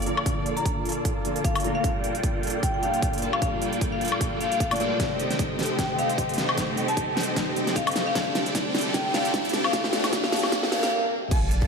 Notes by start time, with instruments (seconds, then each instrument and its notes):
Already playing: felt piano A#2 D3 F3 D4 A4, string section F4 D5, riser
0.02 closed hi-hat
0.06 808-style bass A#1, supersaw synth A#3 F4 A4 D5 A#5, closed hi-hat
0.17 high woodblock
0.24 808-style bass A#1, felt piano A#2 D3 F3 F4, supersaw synth A#3 F4 A4 D5 A5, kick, closed hi-hat
0.28 felt piano D4
0.46 closed hi-hat
0.57 marimba A#5, closed hi-hat
0.66 kick, closed hi-hat
0.85 closed hi-hat
0.89 closed hi-hat
0.92 closed hi-hat
1.05 kick, closed hi-hat
1.24 felt piano A#2 D3 F3 D4 A4, closed hi-hat
1.36 closed hi-hat
1.44 marimba F5, kick, closed hi-hat
1.55 closed hi-hat, high woodblock
1.60 felt piano A#2 D3 F3, closed hi-hat
1.64 808-style bass A#1, felt piano A3 D4, supersaw synth A#3 F4 A4 D5 A#5, closed hi-hat
1.75 marimba F5
1.82 808-style bass G1, felt piano A#2 F3 G3 D4 A4, string section G3, supersaw synth A#3 F4 A4 D5, kick, closed hi-hat
2.04 closed hi-hat
2.15 closed hi-hat
2.23 kick, closed hi-hat
2.43 closed hi-hat
2.47 closed hi-hat
2.50 closed hi-hat
2.63 marimba G5, kick, closed hi-hat
2.74 marimba G5
2.81 felt piano A#2 F3 G3 D4 A4, marimba F5, closed hi-hat
2.94 closed hi-hat
3.02 kick, closed hi-hat
3.13 closed hi-hat
3.18 closed hi-hat
3.22 808-style bass G1, supersaw synth A#3 F4 A4 D5 A5, closed hi-hat
3.33 marimba F5, high woodblock
3.40 felt piano A#2 F3 G3 D4 A4, supersaw synth A#3 A4 D5, marimba F5, kick, closed hi-hat
3.62 closed hi-hat
3.73 closed hi-hat
3.81 kick, closed hi-hat
3.92 marimba F5
4.01 closed hi-hat
4.05 closed hi-hat
4.08 closed hi-hat
4.12 high woodblock
4.21 kick, closed hi-hat
4.41 marimba F5, closed hi-hat
4.51 marimba F5, closed hi-hat
4.60 kick, closed hi-hat
4.70 felt piano A#2 F3 G3 A3 D4, marimba D5, closed hi-hat, high woodblock
4.76 closed hi-hat
4.80 808-style bass G2, supersaw synth A#3 F4 A4 D5 G5, closed hi-hat
4.98 felt piano C3 D#3 G3 A3 D#4, string section A3 D#4 G4 C5, supersaw synth C4 G4 A4 D#5, kick, snare, closed hi-hat
5.19 closed hi-hat
5.30 snare, closed hi-hat
5.39 kick, closed hi-hat
5.59 snare, closed hi-hat
5.63 closed hi-hat
5.66 closed hi-hat
5.76 felt piano C3 D#3 G3 A3 D#4, supersaw synth G4 D#5, marimba G5, kick, snare, closed hi-hat
5.89 marimba G5
5.98 marimba F5, closed hi-hat
6.09 closed hi-hat
6.18 kick, closed hi-hat
6.29 closed hi-hat
6.34 closed hi-hat
6.38 snare, closed hi-hat
6.49 high woodblock
6.55 808-style bass A1, felt piano C3 D#3 G3 A3, supersaw synth C4 G4 A4 D#5 G5, kick, snare, closed hi-hat
6.59 felt piano D#4
6.77 closed hi-hat
6.88 marimba A5, closed hi-hat
6.97 kick, closed hi-hat
7.17 snare, closed hi-hat
7.20 closed hi-hat
7.23 closed hi-hat
7.34 felt piano C3 D#3 G3 A3, supersaw synth C4 G4 A4 G5, kick, snare, closed hi-hat
7.38 felt piano D#4
7.56 closed hi-hat
7.67 snare, closed hi-hat
7.76 marimba F5, kick, closed hi-hat
7.87 closed hi-hat, high woodblock
7.91 closed hi-hat
7.96 snare, closed hi-hat
8.07 marimba F5
8.14 felt piano C3 D3 G3 A3 D4, string section G3 F4 A4, supersaw synth C4 A4 D5, kick, snare, closed hi-hat
8.35 snare, closed hi-hat
8.46 closed hi-hat
8.53 felt piano C3 D3 G3 A3 D4, supersaw synth C4 G4 A4 D5 G5, kick, snare, closed hi-hat
8.75 snare, closed hi-hat
8.78 closed hi-hat
8.81 closed hi-hat
8.92 felt piano C3 D3 G3 A3, supersaw synth G4 D5, marimba G5, kick, snare, closed hi-hat
8.96 felt piano D4
9.05 marimba G5
9.14 marimba F5, snare, closed hi-hat
9.25 closed hi-hat
9.32 felt piano C3 D3 G3 A3 D4, kick, snare, closed hi-hat
9.45 closed hi-hat
9.49 closed hi-hat
9.53 snare, closed hi-hat
9.64 marimba F5, high woodblock
9.71 felt piano C3 D3 G3 A3 D4, supersaw synth C4 G4 A4 D5 G5, marimba F5, kick, snare, closed hi-hat
9.84 snare
9.91 felt piano C3 D3 G3 A3, supersaw synth C4 G4 A4 D5 G5, snare, closed hi-hat
9.95 felt piano D4
10.04 snare, closed hi-hat, high woodblock
10.11 felt piano C3 D3 G3 A3, supersaw synth C4 G4 D5 G5, kick, snare, closed hi-hat
10.15 felt piano D4
10.24 marimba F5, snare
10.31 felt piano C3 D3 G3 A3 D4, supersaw synth C4 G4 A4 D5 G5, snare, closed hi-hat
10.36 closed hi-hat
10.39 closed hi-hat
10.43 snare, high woodblock
10.50 felt piano C3 D3 G3 A3 D4, supersaw synth G4 D5, kick, snare, closed hi-hat, swell
10.63 snare
10.70 felt piano C3 D3 G3 A3 D4, supersaw synth C4 G4 A4 D5 G5, marimba F5, snare, closed hi-hat
10.83 marimba F5, snare, closed hi-hat
11.31 808-style bass A#1, string section A#3 D4 F4, supersaw synth A#3 F4 A4 D5 A5, synth pluck A5, kick, closed hi-hat, crash
11.51 closed hi-hat
11.62 kick